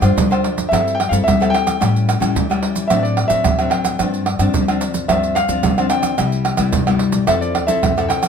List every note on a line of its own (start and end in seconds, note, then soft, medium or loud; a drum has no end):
0.00 0.14 G2 medium
0.00 0.14 G3 medium
0.00 0.25 D4 medium
0.00 0.25 F4 medium
0.00 0.26 C5 medium
0.00 0.66 G5 loud
0.00 pandeiro medium
0.00 tamborim medium
0.00 maracas medium
0.00 surdo soft
0.16 0.69 D3 soft
0.16 0.56 G3 medium
0.16 pandeiro medium
0.16 maracas medium
0.16 surdo loud
0.30 0.67 D4 medium
0.30 0.67 F4 medium
0.30 0.67 C5 medium
0.30 pandeiro soft
0.30 tamborim medium
0.30 maracas soft
0.44 pandeiro medium
0.56 0.69 G2 medium
0.56 pandeiro medium
0.56 maracas medium
0.56 surdo soft
0.69 1.07 G2 medium
0.69 1.23 G3 medium
0.69 0.97 C4 medium
0.69 0.97 E4 soft
0.69 0.97 A4 medium
0.69 0.96 E5 medium
0.73 pandeiro medium
0.73 tamborim medium
0.73 maracas medium
0.73 surdo medium
0.88 pandeiro soft
0.88 maracas soft
0.95 1.11 G5 medium
1.00 pandeiro medium
1.00 tamborim medium
1.09 1.24 G2 medium
1.09 1.35 C4 medium
1.09 1.35 E4 medium
1.09 1.35 A4 medium
1.09 1.14 F5 medium
1.09 pandeiro medium
1.09 maracas medium
1.09 surdo soft
1.24 1.78 G3 medium
1.24 1.50 G3 medium
1.24 1.53 E5 medium
1.28 pandeiro medium
1.28 tamborim medium
1.28 maracas medium
1.28 surdo loud
1.40 1.77 C4 medium
1.40 1.77 E4 medium
1.40 1.77 A4 medium
1.40 pandeiro soft
1.40 tamborim medium
1.40 maracas soft
1.50 2.93 G5 loud
1.54 pandeiro medium
1.54 tamborim medium
1.67 pandeiro medium
1.67 tamborim medium
1.67 maracas medium
1.67 surdo soft
1.80 2.33 A2 medium
1.80 2.16 A2 loud
1.80 2.17 G3 soft
1.80 2.18 C#4 medium
1.80 2.18 E4 medium
1.80 pandeiro medium
1.80 tamborim medium
1.80 maracas medium
1.80 surdo medium
1.96 pandeiro soft
1.96 maracas soft
2.09 pandeiro medium
2.09 tamborim medium
2.09 maracas medium
2.20 2.33 A2 medium
2.20 2.44 G3 medium
2.20 2.44 C#4 medium
2.20 2.45 E4 medium
2.20 pandeiro medium
2.20 tamborim medium
2.20 maracas medium
2.20 surdo soft
2.35 2.87 E3 medium
2.35 2.75 A3 medium
2.35 pandeiro medium
2.35 maracas medium
2.35 surdo medium
2.50 2.86 G3 medium
2.50 2.86 C#4 medium
2.50 2.87 E4 medium
2.50 pandeiro soft
2.50 tamborim medium
2.50 maracas soft
2.63 pandeiro medium
2.75 2.87 A2 medium
2.75 pandeiro medium
2.75 maracas medium
2.75 surdo soft
2.88 3.42 A2 medium
2.88 3.25 A2 medium
2.88 3.27 F#3 medium
2.88 3.27 C4 medium
2.88 3.27 D4 medium
2.88 3.03 E5 medium
2.88 pandeiro medium
2.88 tamborim medium
2.88 maracas medium
2.88 surdo medium
3.03 3.32 D5 medium
3.03 pandeiro soft
3.03 maracas soft
3.17 pandeiro medium
3.17 tamborim medium
3.28 3.42 A2 medium
3.28 3.54 F#3 medium
3.28 3.54 C4 medium
3.28 3.54 D4 medium
3.28 3.72 E5 medium
3.28 pandeiro medium
3.28 maracas medium
3.28 surdo soft
3.44 3.68 D2 medium
3.44 3.97 A2 soft
3.44 pandeiro medium
3.44 tamborim medium
3.44 maracas medium
3.44 surdo medium
3.59 3.96 F#3 medium
3.59 3.96 C4 medium
3.59 3.96 D4 medium
3.59 pandeiro soft
3.59 tamborim medium
3.59 maracas soft
3.70 4.76 G5 medium
3.70 pandeiro medium
3.70 tamborim medium
3.85 pandeiro medium
3.85 tamborim medium
3.85 maracas medium
3.85 surdo soft
3.99 4.34 G2 loud
3.99 4.52 G2 medium
3.99 4.25 F3 soft
3.99 4.25 C4 medium
3.99 4.26 D4 medium
3.99 pandeiro medium
3.99 tamborim medium
3.99 maracas medium
3.99 surdo medium
4.14 pandeiro soft
4.14 maracas soft
4.26 pandeiro medium
4.26 tamborim medium
4.39 4.51 G2 medium
4.39 4.63 F3 medium
4.39 4.63 C4 medium
4.39 4.63 D4 medium
4.39 pandeiro medium
4.39 tamborim medium
4.39 maracas medium
4.39 surdo soft
4.54 5.06 D3 soft
4.54 4.94 G3 medium
4.54 pandeiro medium
4.54 maracas medium
4.54 surdo loud
4.68 5.05 F3 medium
4.68 5.05 C4 medium
4.68 5.05 D4 medium
4.68 pandeiro soft
4.68 tamborim medium
4.68 maracas soft
4.81 pandeiro medium
4.81 maracas medium
4.94 5.06 G2 medium
4.94 pandeiro medium
4.94 maracas medium
4.94 surdo soft
5.08 5.44 D2 medium
5.08 5.61 G2 medium
5.08 5.35 F3 medium
5.08 5.35 C4 medium
5.08 5.35 D4 medium
5.08 5.34 E5 medium
5.08 pandeiro medium
5.08 tamborim medium
5.08 maracas medium
5.08 surdo medium
5.23 pandeiro soft
5.23 maracas soft
5.35 5.87 F5 medium
5.35 pandeiro medium
5.35 tamborim medium
5.35 maracas medium
5.35 surdo soft
5.48 5.61 D2 medium
5.48 5.72 F3 medium
5.48 5.72 C4 soft
5.48 5.72 D4 medium
5.48 pandeiro medium
5.48 maracas medium
5.48 surdo soft
5.63 6.15 D3 medium
5.63 5.87 G3 medium
5.63 pandeiro medium
5.63 tamborim medium
5.63 maracas medium
5.63 surdo medium
5.78 6.14 F3 medium
5.78 6.14 C4 medium
5.78 6.14 D4 medium
5.78 pandeiro soft
5.78 tamborim medium
5.78 maracas soft
5.90 7.23 G5 medium
5.90 pandeiro medium
5.90 tamborim medium
5.90 maracas medium
6.03 pandeiro medium
6.03 tamborim medium
6.03 maracas medium
6.03 surdo soft
6.18 6.53 C2 loud
6.18 6.70 C3 medium
6.18 6.55 G3 medium
6.18 6.55 B3 medium
6.18 6.55 E4 medium
6.18 pandeiro medium
6.18 tamborim medium
6.18 maracas medium
6.18 surdo medium
6.32 pandeiro soft
6.32 maracas soft
6.45 pandeiro medium
6.45 tamborim medium
6.57 6.70 C2 medium
6.57 6.82 G3 medium
6.57 6.82 B3 medium
6.57 6.82 E4 medium
6.57 pandeiro medium
6.57 tamborim medium
6.57 maracas medium
6.57 surdo soft
6.73 7.25 G2 medium
6.73 7.14 C3 medium
6.73 pandeiro medium
6.73 maracas medium
6.73 surdo loud
6.87 7.24 G3 medium
6.87 7.24 B3 medium
6.87 7.24 E4 medium
6.87 pandeiro soft
6.87 tamborim medium
6.87 maracas soft
6.99 pandeiro medium
7.12 7.25 C2 medium
7.12 pandeiro medium
7.12 maracas medium
7.12 surdo soft
7.27 7.68 F2 medium
7.27 7.80 F3 medium
7.27 7.64 C4 medium
7.27 7.65 E4 medium
7.27 7.65 A4 medium
7.27 7.33 E5 medium
7.27 pandeiro medium
7.27 tamborim medium
7.27 maracas medium
7.27 surdo medium
7.41 7.67 D5 medium
7.41 pandeiro soft
7.41 maracas soft
7.55 pandeiro medium
7.55 tamborim medium
7.55 surdo soft
7.67 7.80 C2 medium
7.67 7.91 C4 medium
7.67 7.91 E4 medium
7.67 7.91 A4 medium
7.67 8.06 E5 medium
7.67 pandeiro medium
7.67 maracas medium
7.67 surdo soft
7.83 8.06 F#2 medium
7.83 8.28 C3 medium
7.83 pandeiro medium
7.83 tamborim medium
7.83 maracas medium
7.83 surdo loud
7.97 8.28 C4 medium
7.97 8.28 E4 medium
7.97 8.28 A4 medium
7.97 pandeiro soft
7.97 tamborim medium
7.97 maracas soft
8.09 8.28 G5 medium
8.09 pandeiro medium
8.09 tamborim medium
8.09 maracas medium
8.23 pandeiro medium
8.23 tamborim medium
8.23 maracas medium
8.23 surdo soft